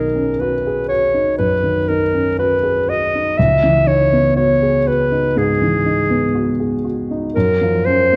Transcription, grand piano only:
Already playing: B1 D#3 D#4
0.15 C#4
0.41 F#4
0.67 G#4
0.91 F#4
1.14 D#4
1.39 F#2
1.63 D#3
1.90 D#4
2.14 C#4
2.39 F#4
2.63 G#4
2.89 F#4
3.15 D#4
3.39 C#2
3.63 E3
3.87 D#4
4.12 B3
4.36 F#4
4.62 G#4
4.87 F#4
5.12 D#4
5.36 G#2
5.62 E3
5.86 D#4
6.10 B3
6.35 F#4
6.60 G#4
6.85 F#4
7.11 D#4
7.37 F#2
7.61 F3
7.87 C#4
8.12 A#3

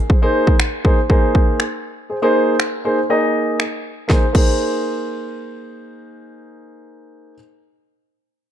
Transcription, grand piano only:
0.10 G#4 C5
0.22 A#3 D#4 G#4 C5
0.85 A#3 D#4 G#4 C5
1.10 A#3 D#4 G#4 C5
2.10 G#4 C5
2.22 A#3 D#4 G#4 C5
2.85 A#3 D#4 G#4 C5
3.10 A#3 D#4 G#4 D#5
4.08 A#3 D#4 G#4
4.12 C5
4.33 A#3 D#4 G#4 C5

